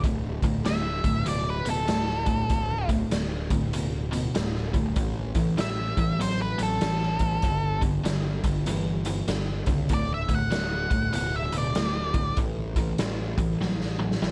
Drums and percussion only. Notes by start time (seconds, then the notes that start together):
0.04 kick, closed hi-hat
0.42 kick, closed hi-hat
0.65 snare, closed hi-hat
1.04 kick, closed hi-hat
1.26 closed hi-hat
1.66 closed hi-hat
1.88 snare, closed hi-hat
2.08 snare
2.26 kick, closed hi-hat
2.50 kick, closed hi-hat
2.89 kick, closed hi-hat
3.11 snare, closed hi-hat
3.50 kick, closed hi-hat
3.73 closed hi-hat
4.13 closed hi-hat
4.35 snare, closed hi-hat
4.55 snare
4.74 kick, closed hi-hat
4.96 kick, closed hi-hat
5.35 kick, closed hi-hat
5.58 snare, closed hi-hat
5.97 kick, closed hi-hat
6.21 closed hi-hat
6.59 closed hi-hat
6.81 snare, closed hi-hat
7.02 snare
7.19 kick, closed hi-hat
7.42 kick, closed hi-hat
7.82 kick, closed hi-hat
8.05 snare, closed hi-hat
8.44 kick, closed hi-hat
8.66 closed hi-hat
9.05 closed hi-hat
9.28 snare, closed hi-hat
9.66 kick, closed hi-hat
9.89 kick, closed hi-hat
10.29 kick, closed hi-hat
10.52 snare, closed hi-hat
10.91 kick, closed hi-hat
11.13 closed hi-hat
11.52 closed hi-hat
11.75 snare, closed hi-hat
12.14 kick, closed hi-hat
12.37 kick, closed hi-hat
12.76 kick, closed hi-hat
12.98 snare, closed hi-hat
13.38 kick, closed hi-hat
13.61 snare
13.81 snare
14.11 snare
14.22 snare